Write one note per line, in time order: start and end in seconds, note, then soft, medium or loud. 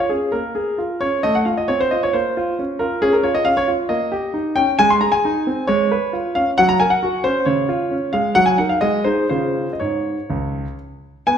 0.00 0.11 F4 soft
0.09 0.33 C#4 soft
0.09 0.30 G#4 medium
0.32 0.55 A#3 soft
0.32 1.01 A#4 medium
0.55 0.79 G#4 soft
0.78 1.02 F4 soft
1.01 1.24 C#4 soft
1.01 1.21 C#5 medium
1.23 1.46 A3 medium
1.23 1.35 D#5 medium
1.35 1.46 F#5 medium
1.45 1.70 F4 soft
1.45 1.57 F5 medium
1.57 1.69 D#5 medium
1.68 1.93 C4 soft
1.68 1.80 C#5 medium
1.80 1.92 C5 medium
1.91 2.15 F4 soft
1.91 2.03 D#5 medium
2.03 2.14 C#5 medium
2.13 2.36 A#3 soft
2.13 2.54 C5 medium
2.37 2.60 F4 medium
2.59 2.82 C#4 soft
2.79 3.04 F4 soft
2.79 3.02 A#4 medium
3.02 3.26 C#4 medium
3.02 3.14 G#4 medium
3.13 3.25 A#4 medium
3.23 3.48 F4 soft
3.23 3.35 C#5 medium
3.35 3.46 D#5 medium
3.45 3.70 C#4 soft
3.45 3.57 F5 medium
3.57 3.69 C#5 medium
3.68 3.90 F4 soft
3.89 4.11 A#3 medium
3.89 4.56 D#5 medium
4.12 4.35 G4 medium
4.34 4.58 D#4 soft
4.56 4.79 C#4 soft
4.56 4.70 G5 medium
4.79 5.01 G#3 medium
4.79 4.90 G#5 loud
4.90 5.02 C6 medium
5.01 5.25 G#4 soft
5.01 5.13 A#5 medium
5.12 5.64 G#5 medium
5.25 5.48 D#4 medium
5.47 5.69 C4 soft
5.67 5.90 G#3 medium
5.67 6.31 C#5 medium
5.91 6.15 B4 medium
6.13 6.37 F4 soft
6.35 6.58 C#4 soft
6.35 6.49 F5 medium
6.58 6.80 F#3 medium
6.58 6.69 F#5 loud
6.69 6.80 A#5 medium
6.80 7.04 A#4 soft
6.80 6.91 G#5 medium
6.90 7.21 F#5 medium
7.03 7.26 F#4 medium
7.24 7.47 C#4 soft
7.24 7.44 C5 medium
7.46 7.68 C#3 medium
7.46 8.09 C#5 medium
7.69 7.92 F4 medium
7.91 8.15 C#4 soft
8.13 8.36 G#3 soft
8.13 8.33 F5 medium
8.35 8.58 F#3 medium
8.35 8.47 F#5 loud
8.46 8.58 G#5 medium
8.58 8.76 D#4 soft
8.58 8.76 A#4 soft
8.58 8.70 F#5 medium
8.69 8.82 F5 medium
8.81 9.05 G#3 soft
8.81 9.06 D#5 medium
9.04 9.23 D#4 soft
9.04 9.24 G#4 soft
9.04 9.28 C5 medium
9.29 9.65 C#3 soft
9.29 9.70 F4 soft
9.29 9.70 G#4 soft
9.29 9.68 C5 medium
9.73 9.81 D#5 soft
9.80 10.15 G#2 soft
9.80 10.74 C#5 medium
10.30 10.64 C#2 soft
11.27 11.38 B3 medium
11.27 11.38 G#5 medium